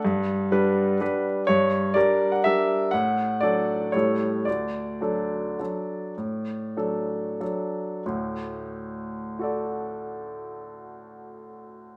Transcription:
\new Staff \with { instrumentName = "Grand piano" } { \time 3/4 \key d \major \tempo 4 = 106 << { fis''2~ fis''8 r8 | cis''4 d''8. fis''16 e''4 | fis''4 d''4 cis''4 | d''2.~ |
d''2 r4 | r2 <fis' a' d''>4~ | <fis' a' d''>2. | } \\ { g,4 <g d' b'>4 <g d' b'>4 | g,4 <g d' bes'>4 <g d' bes'>4 | a,4 <fis d' a'>4 <a, g e' a'>4 | d,4 <fis d' a'>4 <fis d' a'>4 |
a,4 <fis d' a'>4 <fis d' a'>4 | <d, a,>2.~ | <d, a,>2. | } >> }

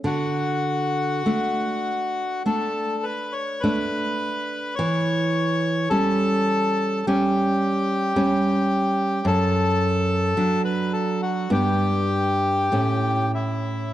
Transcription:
<<
  \new Staff \with { instrumentName = "Bandoneon" } { \time 4/4 \key d \major \tempo 4 = 52 fis'2 a'8 b'16 cis''16 b'4 | cis''4 a'4 g'2 | a'4~ a'16 b'16 a'16 fis'16 g'4. e'8 | }
  \new Staff \with { instrumentName = "Nylon-string guitar" } { \time 4/4 \key d \major d4 <a d'>4 <a d'>4 <a d'>4 | e4 <g cis'>4 <g cis'>4 <g cis'>4 | fis,4 <fis d'>4 <g, b d'>4 <a, a cis'>4 | }
>>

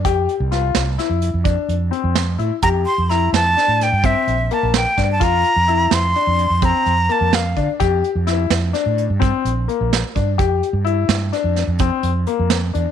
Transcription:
<<
  \new Staff \with { instrumentName = "Flute" } { \time 11/8 \key c \mixolydian \tempo 4 = 128 r1 r4. | bes''8 c'''8 bes''8 a''4 g''8 e''4 a''8 g''8. a''16 | bes''4. c'''4. bes''4 a''8 f''8. r16 | r1 r4. |
r1 r4. | }
  \new Staff \with { instrumentName = "Grand piano" } { \time 11/8 \key c \mixolydian g'4 f'4 e'4 d'4 c'4 e'8 | g'4 e'4 d'4 c'4 bes4 d'8 | f'4 e'4 d'4 c'4 bes4 d'8 | g'4 e'4 d'4 c'4 bes4 d'8 |
g'4 e'4 d'4 c'4 bes4 d'8 | }
  \new Staff \with { instrumentName = "Fretless electric bass" } { \clef bass \time 11/8 \key c \mixolydian f,8 r16 c,8. c,8 r16 f,8 f,8 r16 f,8 r16 f,8. a,16 r16 | f,8 r16 f,8. f,8 r16 a,8 g,8 r16 bes,,8 r16 bes,,8 r16 g,8 | f,8 r16 f,8. f,8 r16 f,8 f,8 r16 f,8 r16 f,8. d16 r16 | f,8 r16 f,8. f,8 r16 a,8 g,8 r16 bes,,8 r16 bes,,8 r16 g,8 |
f,8 r16 g,8. g,8 r16 f,8 f,8 r16 f,8 r16 f,8. e,16 r16 | }
  \new DrumStaff \with { instrumentName = "Drums" } \drummode { \time 11/8 <hh bd>8 hh8 <hh sn>8 <hh sn>8 <hh sn>8 hh8 <hh bd>8 hh8 hh8 <hh sn>8 hh8 | <hh bd>8 hh8 <hh sn>8 <hh sn>8 <hh sn>8 <hh sn>8 <hh bd>8 hh8 hh8 <hh sn>8 <hh bd sn>8 | <hh bd>8 hh8 hh8 <hh sn>8 hh8 hh8 <hh bd>8 hh8 hh8 <hh sn>8 <hh bd>8 | <hh bd>8 hh8 <hh sn>8 <hh sn>8 <hh sn>8 hh8 <hh bd>8 hh8 hh8 <hh sn>8 <hh bd>8 |
<hh bd>8 hh8 hh8 <hh sn>8 <hh sn>8 <hh sn>8 <hh bd>8 hh8 hh8 <hh sn>8 hh8 | }
>>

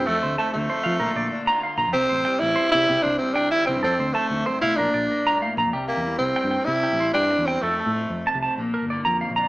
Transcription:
<<
  \new Staff \with { instrumentName = "Clean electric guitar" } { \time 12/8 \key c \mixolydian \tempo 4. = 127 a'8 c''8 a''8 r8 c''8 f''8 bes'8 d''8 r8 bes''8 f''8 bes''8 | g'8 c''8 g''8 r8 c''8 e''8 g'8 c''8 r8 g''8 e''8 g''8 | a'8 c''8 a''8 r8 c''8 f''8 bes'8 d''8 r8 bes''8 f''8 bes''8 | g'8 g'8 r4 g''8 g''8 r8 g'8 c''8 g''8 r8 g''8 |
a'8 a'8 r4 a''8 a''8 r8 bes'8 d''8 bes''8 f''8 bes''8 | }
  \new Staff \with { instrumentName = "Tenor saxophone" } { \time 12/8 \key c \mixolydian a4 a8 a2. r4. | c'4. e'4 e'4 d'8 c'8 d'8 e'8 c'8 | c'4 a4 c'8 e'8 d'2 r4 | r8 bes4 c'4. e'4. d'4 c'8 |
a2 r1 | }
  \new Staff \with { instrumentName = "Clean electric guitar" } { \clef bass \time 12/8 \key c \mixolydian << { c'4 a8 c'8 a8 c'8 <d f'>4 d'8 f'4 f'8 | c'4 g8 c'8 g8 c'8 c'4 g2 | c'4 a2 d'4 bes2 | g2~ g8 c'8 g2~ g8 c'8 |
a2~ a8 c'8 bes2~ bes8 d'8 | } \\ { f,4. f4. bes,4. d4. | c4. e4. c4. c8 d8 e8 | f,4. f,8 g,8 a,8 bes,4. g,8 a,8 bes,8 | c4 e4 g,4 c4 e4 g,4 |
f,4 f4 c4 bes,4 d4 f,4 | } >> }
  \new Staff \with { instrumentName = "Fingered electric bass" } { \clef bass \time 12/8 \key c \mixolydian f,8 d,8 r8 d,8 r8 f8 bes,,16 r16 bes,,8 r4. bes,,16 f,16 | c,8 a,,8 r8 a,,8 r8 c8 c16 r16 c,8 r4. c,16 g,16 | f,8 d,8 r8 d,8 r8 b,,8 bes,,16 r16 bes,,8 r4. bes,,16 f,16 | c,8. e,8. c,8 r16 g,8 r16 c8. a,,8. g,8. e,8. |
f,8. a,8. f,8 r16 c,8 r16 bes,,8. g,,8. f,8. bes,,8. | }
>>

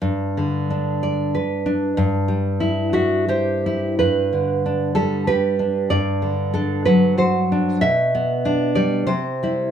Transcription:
\new Staff \with { instrumentName = "Nylon-string guitar" } { \time 3/4 \key g \major \tempo 4 = 94 << { r2. | r4. fis'8 g'4 | b'4. a'8 b'4 | d''4 a'8 b'8 c''4 |
e''4. d''8 c''4 | } \\ { g,8 d8 d'8 d''8 b'8 d'8 | g,8 g8 e'8 e''8 c''8 e'8 | g,8 d8 d'8 g8 g'8 d'8 | g,8 d8 d'8 fis8 fis'8 d'8 |
b,8 b8 d'8 g8 c8 <g e'>8 | } >> }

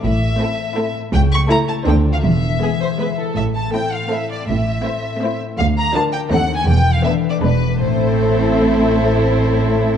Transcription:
<<
  \new Staff \with { instrumentName = "Violin section" } { \time 3/4 \key a \minor \tempo 4 = 162 e''2~ e''8 r8 | g''8 cis'''8 bes''8 a''8 \tuplet 3/2 { g''4 f''8 } | e''2~ e''8 r8 | e''8 a''8 g''8 f''8 e''8 d''8 |
e''2~ e''8 r8 | f''8 bes''8 a''8 g''8 \tuplet 3/2 { fis''4 gis''8 } | \tuplet 3/2 { g''4 f''8 e''4 d''8 } b'4 | c''2.~ |
c''2. | }
  \new Staff \with { instrumentName = "Violin section" } { \time 3/4 \key a \minor r4 <e' a'>4 <e' a'>4 | r4 <e' a'>4 <a' c''>4 | r4 gis'8 c''8 b'8 a'8 | r4 <e' a'>4 <e' a'>4 |
r4 <e' c''>4 <e' c''>4 | r4 <f' bes'>4 <dis' a'>4 | r4 <d' b'>4 <d' b'>4 | <e' a'>2.~ |
<e' a'>2. | }
  \new Staff \with { instrumentName = "Harp" } { \time 3/4 \key a \minor <a, a c' e' a' c''>8 a8 c''8 a'8 e'8 a8 | cis8 a8 a'8 e'8 d8 <f' a'>8 | e8 e'8 b'8 e''8 gis'8 e'8 | a,8 c'8 a'8 c''8 e'8 c'8 |
a,8 c'8 a'8 c''8 e'8 c'8 | d8 d'8 bes'8 d''8 dis8 <bis dis'>8 | e8 b8 a'8 b'8 e8 <b d'>8 | <a, a c' e' c''>2.~ |
<a, a c' e' c''>2. | }
  \new Staff \with { instrumentName = "Viola section" } { \time 3/4 \key a \minor r4 <a c'>4 <a c'>4 | r4 <a e'>4 <a d'>4 | r4 <gis b>4 <gis b>4 | r4 <a c'>4 <a c'>4 |
r4 <a c'>4 <a c'>4 | r4 <f d'>4 <a bis>4 | r4 <a b>4 <gis b>4 | <a c'>2.~ |
<a c'>2. | }
  \new Staff \with { instrumentName = "Cello section" } { \clef bass \time 3/4 \key a \minor a,4 r2 | cis,4 r4 d,4 | e,4 r2 | a,4 r2 |
a,4 r2 | d,4 r4 dis,4 | e,4 r4 e,4 | a,2.~ |
a,2. | }
  \new Staff \with { instrumentName = "Double bass section" } { \clef bass \time 3/4 \key a \minor a,,4 r2 | cis,4 r4 d,4 | e,,4 r2 | a,,4 r2 |
a,,4 r2 | d,4 r4 dis,4 | e,,4 r4 e,,4 | a,,2.~ |
a,,2. | }
>>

